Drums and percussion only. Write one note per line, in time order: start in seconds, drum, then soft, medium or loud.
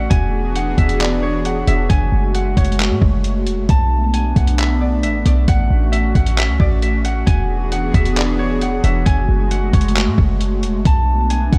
0.11 kick loud
0.11 closed hi-hat medium
0.56 closed hi-hat medium
0.78 kick medium
0.78 closed hi-hat soft
0.89 closed hi-hat medium
1.00 clap loud
1.00 closed hi-hat medium
1.45 closed hi-hat medium
1.67 closed hi-hat medium
1.90 kick loud
1.90 closed hi-hat medium
2.35 closed hi-hat medium
2.57 kick medium
2.57 closed hi-hat medium
2.65 closed hi-hat medium
2.72 closed hi-hat medium
2.79 clap loud
2.79 closed hi-hat medium
3.02 kick medium
3.24 closed hi-hat medium
3.47 closed hi-hat medium
3.69 kick loud
3.69 closed hi-hat medium
4.14 closed hi-hat medium
4.36 kick medium
4.36 closed hi-hat soft
4.47 closed hi-hat medium
4.58 clap loud
4.58 closed hi-hat medium
5.03 closed hi-hat medium
5.26 closed hi-hat medium
5.48 kick loud
5.48 closed hi-hat medium
5.93 closed hi-hat medium
6.15 kick medium
6.15 closed hi-hat soft
6.26 closed hi-hat medium
6.37 clap loud
6.37 closed hi-hat medium
6.60 kick medium
6.82 closed hi-hat medium
7.05 closed hi-hat medium
7.27 kick loud
7.27 closed hi-hat medium
7.72 closed hi-hat medium
7.94 kick medium
7.94 closed hi-hat soft
8.05 closed hi-hat medium
8.17 clap loud
8.17 closed hi-hat medium
8.61 closed hi-hat medium
8.84 closed hi-hat medium
9.06 kick loud
9.06 closed hi-hat medium
9.51 closed hi-hat medium
9.73 kick medium
9.73 closed hi-hat medium
9.81 closed hi-hat medium
9.88 closed hi-hat medium
9.96 clap loud
9.96 closed hi-hat medium
10.18 kick medium
10.41 closed hi-hat medium
10.63 closed hi-hat medium
10.85 kick loud
10.85 closed hi-hat medium
11.30 closed hi-hat medium
11.53 kick medium
11.53 closed hi-hat medium